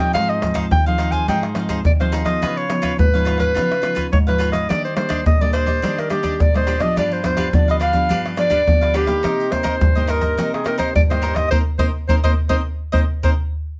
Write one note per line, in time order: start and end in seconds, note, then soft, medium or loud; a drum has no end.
0.00 0.12 A#2 medium
0.00 0.37 F3 medium
0.00 0.38 C4 medium
0.00 0.38 D#4 medium
0.00 0.13 G4 soft
0.00 0.12 C#5 soft
0.00 0.12 D#5 soft
0.00 0.13 G5 medium
0.13 0.69 G#2 medium
0.13 0.53 D#4 medium
0.13 0.53 G#4 medium
0.13 0.54 C5 medium
0.13 0.31 F5 loud
0.13 0.54 F5 medium
0.13 pandeiro medium
0.13 tamborim medium
0.13 shaker medium
0.13 surdo medium
0.29 0.57 D#5 medium
0.29 pandeiro soft
0.29 shaker soft
0.41 0.80 F3 medium
0.41 0.80 C4 medium
0.41 0.80 D#4 medium
0.41 pandeiro medium
0.41 tamborim medium
0.41 shaker medium
0.41 surdo soft
0.54 0.64 D#4 medium
0.54 0.65 G#4 medium
0.54 0.65 C5 medium
0.54 0.65 F5 medium
0.54 pandeiro medium
0.54 tamborim medium
0.54 shaker medium
0.54 surdo soft
0.71 1.25 D#3 medium
0.71 0.85 G5 loud
0.71 pandeiro medium
0.71 shaker loud
0.71 surdo loud
0.86 1.24 F3 medium
0.86 1.24 C4 medium
0.86 1.24 D#4 medium
0.86 0.98 G#4 soft
0.86 0.99 C5 soft
0.86 0.99 F5 medium
0.86 1.13 F5 medium
0.86 pandeiro soft
0.86 shaker soft
0.98 1.12 D#4 medium
0.98 1.12 G#4 medium
0.98 1.11 C5 medium
0.98 1.10 F5 medium
0.98 pandeiro medium
0.98 tamborim medium
0.98 shaker medium
1.12 1.27 G#4 soft
1.12 1.26 C5 soft
1.12 1.26 F5 medium
1.12 1.27 G#5 medium
1.12 pandeiro medium
1.12 shaker medium
1.12 surdo soft
1.28 1.82 G#2 medium
1.28 1.45 F3 medium
1.28 1.45 C4 medium
1.28 1.55 D#4 medium
1.28 1.45 D#4 medium
1.28 1.55 G#4 medium
1.28 1.56 C5 medium
1.28 1.56 F5 medium
1.28 1.41 G5 medium
1.28 pandeiro medium
1.28 shaker medium
1.28 surdo medium
1.43 pandeiro soft
1.43 tamborim medium
1.43 shaker soft
1.55 1.82 F3 soft
1.55 1.83 C4 medium
1.55 1.68 D#4 soft
1.55 1.83 D#4 medium
1.55 1.68 G#4 medium
1.55 1.68 C5 medium
1.55 1.69 F5 medium
1.55 pandeiro medium
1.55 tamborim medium
1.69 1.79 D#4 medium
1.69 1.79 G#4 medium
1.69 1.79 C5 medium
1.69 1.79 F5 medium
1.69 pandeiro medium
1.69 shaker medium
1.69 surdo soft
1.85 2.39 D#3 medium
1.85 1.92 D5 medium
1.85 pandeiro medium
1.85 shaker medium
1.85 surdo loud
2.00 2.23 F3 medium
2.00 2.24 C4 medium
2.00 2.24 D#4 medium
2.00 2.12 G#4 soft
2.00 2.13 C5 medium
2.00 2.13 C5 soft
2.00 2.13 F5 soft
2.00 pandeiro soft
2.00 tamborim medium
2.00 shaker soft
2.12 2.26 D#4 medium
2.12 2.26 G#4 medium
2.12 2.25 C5 medium
2.12 2.24 F5 medium
2.12 pandeiro medium
2.25 2.64 F3 medium
2.25 2.64 B3 medium
2.25 2.65 D#4 medium
2.25 2.40 G#4 soft
2.25 2.40 C5 soft
2.25 2.58 D#5 medium
2.25 2.39 F5 soft
2.25 pandeiro medium
2.25 tamborim medium
2.25 shaker medium
2.25 surdo soft
2.42 2.96 C#3 medium
2.42 2.81 F4 medium
2.42 2.81 B4 medium
2.42 2.82 C#5 medium
2.42 2.82 F5 medium
2.42 pandeiro medium
2.42 tamborim medium
2.42 shaker medium
2.42 surdo medium
2.57 2.98 C#5 medium
2.57 pandeiro soft
2.57 shaker soft
2.69 3.08 F3 medium
2.69 3.08 B3 medium
2.69 3.08 D#4 medium
2.69 pandeiro medium
2.69 tamborim medium
2.69 shaker medium
2.82 2.92 F4 medium
2.82 2.92 B4 medium
2.82 2.92 C#5 medium
2.82 2.93 F5 medium
2.82 pandeiro soft
2.82 tamborim medium
2.82 shaker medium
2.82 surdo soft
2.98 3.52 G#2 medium
2.98 3.38 B4 medium
2.98 pandeiro medium
2.98 shaker medium
2.98 surdo loud
3.14 3.51 F3 medium
3.14 3.52 B3 medium
3.14 3.52 D#4 medium
3.14 3.25 B4 soft
3.14 3.25 C#5 soft
3.14 3.26 F5 medium
3.14 pandeiro soft
3.14 shaker soft
3.25 3.39 F4 medium
3.25 3.39 B4 medium
3.25 3.38 C#5 medium
3.25 3.37 F5 medium
3.25 pandeiro medium
3.25 tamborim medium
3.38 4.07 B4 medium
3.38 3.54 B4 soft
3.38 3.53 C#5 soft
3.38 3.53 F5 soft
3.38 pandeiro medium
3.38 shaker medium
3.38 surdo soft
3.54 4.09 C#3 medium
3.54 3.72 F3 medium
3.54 3.72 B3 medium
3.54 3.72 D#4 medium
3.54 3.81 F4 medium
3.54 3.81 B4 medium
3.54 3.82 C#5 medium
3.54 3.82 F5 medium
3.54 pandeiro medium
3.54 shaker medium
3.54 surdo medium
3.72 pandeiro soft
3.72 tamborim medium
3.72 shaker soft
3.82 4.10 F3 soft
3.82 4.10 B3 soft
3.82 4.10 D#4 medium
3.82 3.94 F4 soft
3.82 3.95 B4 soft
3.82 3.95 C#5 soft
3.82 3.95 F5 medium
3.82 pandeiro medium
3.82 tamborim medium
3.82 shaker medium
3.95 4.05 F4 medium
3.95 4.06 B4 medium
3.95 4.06 C#5 medium
3.95 4.06 F5 medium
3.95 pandeiro medium
3.95 shaker medium
3.95 surdo soft
4.12 4.66 G#2 medium
4.12 4.19 C#5 medium
4.12 pandeiro medium
4.12 shaker medium
4.12 surdo medium
4.27 4.65 F3 medium
4.27 4.65 B3 medium
4.27 4.65 D#4 medium
4.27 4.51 B4 medium
4.27 4.38 B4 soft
4.27 4.39 C#5 soft
4.27 4.39 F5 soft
4.27 pandeiro soft
4.27 tamborim medium
4.27 shaker soft
4.38 4.53 F4 medium
4.38 4.52 B4 medium
4.38 4.52 C#5 medium
4.38 4.51 F5 medium
4.38 pandeiro medium
4.38 shaker medium
4.52 4.67 B4 soft
4.52 4.67 C#5 soft
4.52 4.71 D#5 medium
4.52 4.66 F5 soft
4.52 pandeiro medium
4.52 tamborim medium
4.52 shaker medium
4.52 surdo soft
4.69 5.23 D#3 medium
4.69 4.86 G3 medium
4.69 4.86 A#3 soft
4.69 4.86 D4 medium
4.69 5.08 G4 medium
4.69 4.83 D5 medium
4.69 5.09 D5 medium
4.69 5.09 D#5 medium
4.69 pandeiro medium
4.69 tamborim medium
4.69 shaker medium
4.69 surdo medium
4.84 4.96 C5 medium
4.84 pandeiro soft
4.84 shaker soft
4.96 5.35 G3 medium
4.96 5.35 A#3 medium
4.96 5.35 D4 medium
4.96 5.23 C5 medium
4.96 pandeiro medium
4.96 tamborim medium
5.09 5.19 D4 medium
5.09 5.20 G4 medium
5.09 5.20 D5 medium
5.09 5.20 D#5 medium
5.09 pandeiro soft
5.09 tamborim medium
5.09 shaker medium
5.09 surdo soft
5.26 5.80 A#2 medium
5.26 5.43 D#5 loud
5.26 pandeiro medium
5.26 shaker medium
5.26 surdo loud
5.41 5.79 G3 medium
5.41 5.79 A#3 medium
5.41 5.79 D4 medium
5.41 5.52 G4 soft
5.41 5.54 D5 medium
5.41 5.52 D5 medium
5.41 5.53 D#5 soft
5.41 pandeiro soft
5.41 shaker soft
5.53 5.67 D4 medium
5.53 5.67 G4 medium
5.53 6.01 C5 loud
5.53 5.65 D5 medium
5.53 5.66 D#5 medium
5.53 pandeiro medium
5.53 tamborim medium
5.53 shaker medium
5.66 5.81 G4 soft
5.66 5.80 D5 medium
5.66 5.81 D#5 medium
5.66 pandeiro medium
5.66 shaker medium
5.66 surdo soft
5.82 6.37 D#3 medium
5.82 6.00 G3 medium
5.82 6.00 A#3 medium
5.82 6.08 D4 medium
5.82 6.00 D4 medium
5.82 6.09 G4 medium
5.82 6.11 D5 medium
5.82 6.10 D#5 medium
5.82 pandeiro medium
5.82 shaker medium
5.82 surdo medium
5.98 6.10 A#4 medium
5.98 pandeiro soft
5.98 tamborim medium
5.98 shaker soft
6.10 6.49 G3 soft
6.10 6.49 A#3 soft
6.10 6.22 D4 soft
6.10 6.49 D4 medium
6.10 6.22 G4 soft
6.10 6.43 G4 medium
6.10 6.22 D5 medium
6.10 6.22 D#5 soft
6.10 pandeiro medium
6.10 tamborim medium
6.10 shaker medium
6.23 6.33 D4 medium
6.23 6.33 G4 medium
6.23 6.34 D5 medium
6.23 6.34 D#5 medium
6.23 pandeiro medium
6.23 shaker medium
6.23 surdo soft
6.39 6.94 A#2 medium
6.39 6.55 D5 medium
6.39 pandeiro medium
6.39 shaker medium
6.39 surdo loud
6.54 6.78 G3 medium
6.54 6.78 A#3 medium
6.54 6.79 D4 medium
6.54 6.66 G4 soft
6.54 6.83 C5 medium
6.54 6.67 D5 soft
6.54 6.67 D#5 soft
6.54 pandeiro soft
6.54 tamborim medium
6.54 shaker soft
6.67 6.80 D4 medium
6.67 6.81 G4 medium
6.67 6.78 D5 medium
6.67 6.79 D#5 medium
6.67 pandeiro medium
6.80 7.19 F3 medium
6.80 7.20 B3 medium
6.80 7.20 D4 medium
6.80 6.95 G4 soft
6.80 6.94 D5 soft
6.80 6.95 D#5 soft
6.80 6.96 D#5 medium
6.80 pandeiro medium
6.80 tamborim medium
6.80 shaker medium
6.80 surdo soft
6.96 7.51 G2 medium
6.96 7.36 D4 medium
6.96 7.36 G4 medium
6.96 7.37 B4 medium
6.96 7.14 D5 medium
6.96 7.37 F5 medium
6.96 pandeiro medium
6.96 tamborim medium
6.96 shaker medium
6.96 surdo medium
7.11 7.25 C5 medium
7.11 pandeiro soft
7.11 shaker soft
7.24 7.48 F3 medium
7.24 7.48 B3 medium
7.24 7.49 D4 medium
7.24 7.56 C5 medium
7.24 pandeiro medium
7.24 tamborim medium
7.24 shaker medium
7.24 surdo soft
7.37 7.47 D4 medium
7.37 7.47 G4 medium
7.37 7.47 B4 medium
7.37 7.48 F5 medium
7.37 pandeiro medium
7.37 tamborim medium
7.37 shaker medium
7.37 surdo soft
7.53 8.08 D3 medium
7.53 7.92 F3 medium
7.53 7.92 B3 medium
7.53 7.92 D4 medium
7.53 7.68 D5 medium
7.53 pandeiro medium
7.53 shaker medium
7.53 surdo loud
7.68 7.79 G4 soft
7.68 7.80 B4 medium
7.68 7.77 D#5 medium
7.68 7.81 F5 medium
7.68 pandeiro soft
7.68 shaker soft
7.80 7.94 D4 medium
7.80 7.94 G4 medium
7.80 7.93 B4 medium
7.80 7.92 F5 medium
7.80 8.22 F5 loud
7.80 pandeiro medium
7.80 tamborim medium
7.80 shaker medium
7.93 8.33 F3 medium
7.93 8.33 B3 medium
7.93 8.33 D4 medium
7.93 8.09 G4 soft
7.93 8.08 B4 soft
7.93 8.08 F5 medium
7.93 pandeiro medium
7.93 shaker medium
7.93 surdo soft
8.09 8.64 G2 medium
8.09 8.35 D4 medium
8.09 8.36 G4 medium
8.09 8.37 B4 medium
8.09 8.37 F5 medium
8.09 pandeiro medium
8.09 shaker medium
8.09 surdo medium
8.26 pandeiro soft
8.26 tamborim medium
8.26 shaker soft
8.37 8.55 F3 soft
8.37 8.55 B3 medium
8.37 8.49 D4 soft
8.37 8.55 D4 medium
8.37 8.49 G4 medium
8.37 8.50 B4 soft
8.37 8.98 D5 loud
8.37 8.50 F5 medium
8.37 pandeiro medium
8.37 tamborim medium
8.37 shaker medium
8.50 8.60 D4 medium
8.50 8.61 G4 medium
8.50 8.61 B4 medium
8.50 8.61 F5 medium
8.50 pandeiro medium
8.50 shaker medium
8.50 surdo soft
8.66 9.21 D3 medium
8.66 9.05 F3 soft
8.66 9.05 B3 medium
8.66 9.06 D4 medium
8.66 pandeiro medium
8.66 shaker medium
8.66 surdo loud
8.81 8.93 G4 soft
8.81 8.94 B4 soft
8.81 8.94 F5 soft
8.81 pandeiro soft
8.81 tamborim medium
8.81 shaker soft
8.94 9.08 D4 medium
8.94 9.07 G4 medium
8.94 9.53 G4 medium
8.94 9.06 B4 medium
8.94 9.05 F5 medium
8.94 pandeiro medium
8.94 shaker medium
9.06 9.47 A#3 medium
9.06 9.47 D#4 medium
9.06 9.22 G4 soft
9.06 9.47 G4 medium
9.06 9.22 B4 soft
9.06 9.21 F5 soft
9.06 pandeiro medium
9.06 tamborim medium
9.06 shaker medium
9.06 surdo soft
9.23 9.78 C3 medium
9.23 9.62 D#4 medium
9.23 9.63 A#4 medium
9.23 9.63 C5 medium
9.23 9.63 D#5 medium
9.23 pandeiro medium
9.23 tamborim medium
9.23 shaker medium
9.23 surdo medium
9.40 pandeiro soft
9.40 shaker soft
9.51 9.90 A#3 medium
9.51 9.90 D#4 medium
9.51 9.90 G4 medium
9.51 10.11 C5 medium
9.51 pandeiro medium
9.51 tamborim medium
9.51 shaker medium
9.51 surdo soft
9.63 9.74 D#4 medium
9.63 9.74 A#4 medium
9.63 9.75 C5 medium
9.63 9.75 D#5 medium
9.63 pandeiro medium
9.63 tamborim medium
9.63 shaker medium
9.63 surdo soft
9.81 10.35 G2 medium
9.81 pandeiro medium
9.81 shaker medium
9.81 surdo loud
9.95 10.34 A#3 medium
9.95 10.34 D#4 medium
9.95 10.34 G4 medium
9.95 10.07 A#4 soft
9.95 10.08 C5 medium
9.95 10.09 D#5 medium
9.95 pandeiro soft
9.95 shaker soft
10.07 10.22 D#4 medium
10.07 10.22 A#4 medium
10.07 10.53 A#4 loud
10.07 10.21 C5 medium
10.07 10.20 D#5 medium
10.07 pandeiro medium
10.07 tamborim medium
10.21 10.37 A#4 soft
10.21 10.36 C5 soft
10.21 10.36 D#5 medium
10.21 pandeiro medium
10.21 shaker medium
10.21 surdo soft
10.37 10.92 C3 medium
10.37 10.62 A#3 medium
10.37 10.63 D#4 medium
10.37 10.62 D#4 medium
10.37 10.63 G4 medium
10.37 10.64 A#4 medium
10.37 10.65 C5 medium
10.37 10.65 D#5 medium
10.37 pandeiro medium
10.37 shaker medium
10.37 surdo medium
10.54 10.65 G#4 medium
10.54 pandeiro soft
10.54 tamborim medium
10.54 shaker soft
10.64 10.92 A#3 medium
10.64 10.76 D#4 soft
10.64 10.93 D#4 soft
10.64 10.93 G4 medium
10.64 10.77 A#4 medium
10.64 10.78 A#4 medium
10.64 10.77 C5 medium
10.64 10.78 D#5 medium
10.64 pandeiro medium
10.64 tamborim medium
10.78 10.88 D#4 medium
10.78 10.89 A#4 medium
10.78 10.89 C5 medium
10.78 10.93 C5 medium
10.78 10.89 D#5 medium
10.78 pandeiro medium
10.78 shaker medium
10.78 surdo soft
10.95 11.49 G2 medium
10.95 11.02 D5 medium
10.95 pandeiro medium
10.95 shaker medium
10.95 surdo loud
11.10 11.48 A#3 medium
11.10 11.48 D#4 medium
11.10 11.48 G4 medium
11.10 11.21 A#4 soft
11.10 11.36 C5 medium
11.10 11.22 C5 soft
11.10 11.22 D#5 medium
11.10 pandeiro soft
11.10 tamborim medium
11.10 shaker soft
11.22 11.36 D#4 medium
11.22 11.36 A#4 medium
11.22 11.35 C5 medium
11.22 11.34 D#5 medium
11.22 pandeiro medium
11.35 11.51 A#4 soft
11.35 11.50 C5 soft
11.35 11.49 D#5 soft
11.35 11.50 D#5 medium
11.35 pandeiro medium
11.35 tamborim medium
11.35 shaker medium
11.35 surdo soft
11.51 11.61 A#3 medium
11.51 11.61 C4 medium
11.51 11.61 D#4 loud
11.51 11.61 A#4 medium
11.51 11.58 C5 loud
11.51 11.61 C5 medium
11.51 11.61 D#5 medium
11.51 surdo medium
11.79 11.89 A#3 medium
11.79 11.89 C4 loud
11.79 11.89 D#4 loud
11.79 11.89 A#4 medium
11.79 11.86 C5 medium
11.79 11.89 C5 medium
11.79 11.89 D#5 loud
11.79 surdo loud
12.08 12.18 A#3 medium
12.08 12.18 C4 medium
12.08 12.18 D#4 medium
12.08 12.19 A#4 medium
12.08 12.16 C5 loud
12.08 12.19 C5 medium
12.08 12.18 D#5 medium
12.08 surdo loud
12.24 12.33 A#3 medium
12.24 12.33 C4 medium
12.24 12.33 D#4 medium
12.24 12.33 A#4 medium
12.24 12.33 C5 medium
12.24 12.31 C5 medium
12.24 12.33 D#5 medium
12.24 surdo medium
12.49 12.60 A#3 loud
12.49 12.60 C4 loud
12.49 12.60 D#4 loud
12.49 12.59 A#4 medium
12.49 12.59 C5 medium
12.49 12.57 C5 medium
12.49 12.60 D#5 loud
12.49 surdo medium
12.92 13.03 A#3 medium
12.92 13.03 C4 medium
12.92 13.03 D#4 medium
12.92 13.02 A#4 medium
12.92 13.03 C5 medium
12.92 13.01 C5 medium
12.92 13.03 D#5 medium
12.92 surdo medium
13.23 13.33 A#3 medium
13.23 13.32 C4 medium
13.23 13.33 D#4 medium
13.23 13.33 A#4 loud
13.23 13.32 C5 medium
13.23 13.31 C5 medium
13.23 13.32 D#5 medium
13.23 surdo loud